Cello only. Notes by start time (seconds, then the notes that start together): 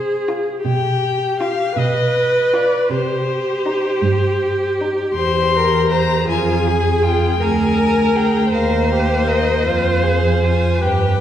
Already playing: C3
0.65 B2
1.76 B2
2.90 C3
4.02 G2
5.15 E2
6.28 F2
7.40 D2
8.53 D#2
9.66 F2
10.82 G2